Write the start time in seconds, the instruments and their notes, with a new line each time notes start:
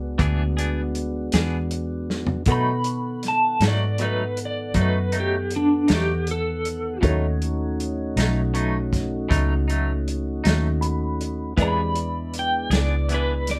Already playing: fingered electric bass C#2, tonewheel organ G#3 B3 D4 F#4, upright piano D4 F#4 G#4 B4, clean electric guitar B4
0.18 fingered electric bass D2, clean electric guitar E3 B3 D4 G#4, kick, closed hi-hat
0.57 clean electric guitar B3 D4 G#4, closed hi-hat
0.95 closed hi-hat
1.32 fingered electric bass E2, clean electric guitar D4 G#4, snare, closed hi-hat
1.37 clean electric guitar B3
1.71 closed hi-hat
2.10 snare
2.27 floor tom
2.46 fingered electric bass B2, clean electric guitar B2 F#3 A3, tonewheel organ D#3 B3 A4 F#5, upright piano B3 A4 F#5 C#6, kick, closed hi-hat
2.50 clean electric guitar D#4 B5
2.84 closed hi-hat
3.23 snare, closed hi-hat
3.28 clean electric guitar A5
3.60 fingered electric bass G#2, clean electric guitar A3 D#4, snare, closed hi-hat
3.65 clean electric guitar F#3 D5
3.98 clean electric guitar B2 F#3 A3, closed hi-hat
4.03 clean electric guitar D#4 B4
4.37 closed hi-hat
4.45 clean electric guitar D5
4.74 fingered electric bass F#2, clean electric guitar B2 F#3 A3 D#4, kick, closed hi-hat
4.81 clean electric guitar B4
5.12 clean electric guitar F#3 A3 D#4, closed hi-hat
5.20 clean electric guitar G4
5.51 closed hi-hat
5.56 clean electric guitar D4
5.88 fingered electric bass E2, clean electric guitar F#3 A3 D#4, snare, closed hi-hat
5.95 clean electric guitar G4
6.27 closed hi-hat
6.31 clean electric guitar A4
6.65 closed hi-hat
7.01 fingered electric bass D#2, clean electric guitar B2 F#3 A3 D#4, tonewheel organ A3 C#4 D#4 F#4, upright piano D#4 F#4 A4 C#5, kick, closed hi-hat
7.42 closed hi-hat
7.80 closed hi-hat
8.16 fingered electric bass B1, clean electric guitar A3 D#4, snare, closed hi-hat
8.20 clean electric guitar F#3
8.54 clean electric guitar B2 F#3 A3 D#4, closed hi-hat
8.93 kick, snare, closed hi-hat
9.29 fingered electric bass C#2, clean electric guitar B2 F#3 A3 D#4, kick, closed hi-hat
9.68 clean electric guitar F#3 A3 D#4, closed hi-hat
10.08 closed hi-hat
10.44 fingered electric bass D#2, clean electric guitar F#3 A3 D#4, snare, closed hi-hat
10.81 upright piano B5, closed hi-hat
11.21 closed hi-hat
11.56 fingered electric bass E2, clean electric guitar E3 B3 D4 G#4, upright piano G#3 E4 B4 D5, tonewheel organ G#3 C4 D4 G4, kick, closed hi-hat
11.62 clean electric guitar B5
11.95 tonewheel organ G#3 B3 D4 E4, closed hi-hat
12.34 closed hi-hat
12.39 clean electric guitar G5
12.70 fingered electric bass C#2, clean electric guitar B3 D4 G#4, snare, closed hi-hat
12.76 clean electric guitar D5
13.09 clean electric guitar E3 B3 D4 G#4, closed hi-hat
13.14 clean electric guitar B4
13.47 clean electric guitar D5, snare, closed hi-hat